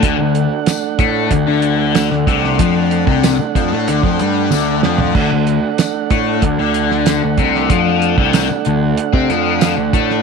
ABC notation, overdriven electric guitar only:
X:1
M:4/4
L:1/16
Q:1/4=94
K:Dmix
V:1 name="Overdriven electric guitar" clef=bass
D, D,2 z3 A,2 D, D,4 D, C,2 | =F,3 C,2 z F, A, D, F, G,2 D,2 F,2 | D, D,2 z3 A,2 D, D,4 D, C,2 | =F,3 C,2 z D,2 z C F,3 D, A,2 |]